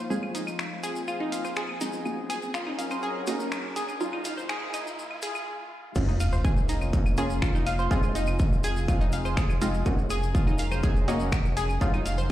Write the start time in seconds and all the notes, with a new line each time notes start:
Already playing: F4, riser
0.10 F3 G#3 C4 F4 G#4, maracas
0.23 claves
0.35 D#4, open hi-hat, maracas
0.47 claves, maracas
0.59 finger snap, maracas
0.83 G#4, open hi-hat, claves, maracas
0.96 maracas
1.08 F4, claves, maracas
1.20 D#4
1.32 F5, open hi-hat, maracas
1.45 C5, claves, maracas
1.56 G#4, finger snap, maracas
1.69 claves
1.81 G#3 C4 D#4 F4, open hi-hat, maracas
1.93 maracas
2.05 F#3 A#3 C#4 F#4 A#4, claves, maracas
2.30 G#4, open hi-hat, claves, maracas
2.42 maracas
2.54 F4, finger snap, maracas
2.67 D#4, claves
2.79 F5, open hi-hat, maracas
2.91 C5, claves, maracas
3.03 G#4, maracas
3.27 A#3 C#4 D#4 F#4, open hi-hat, claves, maracas
3.40 maracas
3.52 finger snap, claves, maracas
3.76 G#4, open hi-hat, maracas
3.89 claves, maracas
4.00 D#3 F#3 A#3 D#4 F4, maracas
4.13 D#4, claves
4.25 F5, open hi-hat, maracas
4.37 C5, maracas
4.49 G#4, finger snap, claves, maracas
4.74 D#4, open hi-hat, claves, maracas
4.87 maracas
4.99 maracas
5.11 claves
5.22 G#4, open hi-hat, maracas
5.35 claves, maracas
5.95 F1 A#3 C#4 F4 F5, kick, crash, sub drop, maracas
6.08 D#4 D#5, maracas
6.20 F5 F6, open hi-hat, claves, maracas
6.33 C5 C6, maracas
6.45 G#4 G#5, kick, claves, maracas
6.57 maracas
6.69 D#4 D#5, open hi-hat, maracas
6.81 claves, maracas
6.93 kick, maracas
7.06 claves, maracas
7.17 A#3 C#4 F4 G#4 G#5, open hi-hat, maracas
7.30 maracas
7.42 F4 F5, finger snap, kick, claves, maracas
7.55 D#4 D#5, maracas
7.66 F5 F6, open hi-hat, claves, maracas
7.79 C5 C6, maracas
7.91 F1 F3 G#3 C4 F4 G#4 G#5, kick, maracas
8.03 claves, maracas
8.15 D#4 D#5, open hi-hat, maracas
8.27 claves, maracas
8.39 kick, maracas
8.53 maracas
8.64 G#4 G#5, open hi-hat, claves, maracas
8.76 maracas
8.88 F4 F5, kick, claves, maracas
9.01 D#4 D#5, maracas
9.12 F5 F6, open hi-hat, maracas
9.25 C5 C6, claves, maracas
9.37 G#4 G#5, finger snap, kick, maracas
9.50 claves, maracas
9.62 G#3 C4 D#4 F4 D#5, open hi-hat, maracas
9.74 maracas
9.86 F1 F#3 A#3 C#4 F#4 A#4, kick, claves, maracas
9.98 maracas
10.10 G#4 G#5, open hi-hat, claves, maracas
10.23 maracas
10.35 F4 F5, kick, maracas
10.47 D#4 D#5, claves, maracas
10.58 F5 F6, open hi-hat, maracas
10.72 C5 C6, claves, maracas
10.83 G#4 G#5, kick, maracas
10.96 maracas
11.08 A#3 C#4 D#4 F#4 D#5, open hi-hat, claves, maracas
11.20 maracas
11.32 finger snap, kick, claves, maracas
11.45 maracas
11.57 G#4 G#5, open hi-hat, maracas
11.69 claves, maracas
11.81 F1 D#3 F#3 A#3 D#4 F4 F5, kick, maracas
11.94 D#4 D#5, claves, maracas
12.06 F5 F6, open hi-hat, maracas
12.18 C5 C6, maracas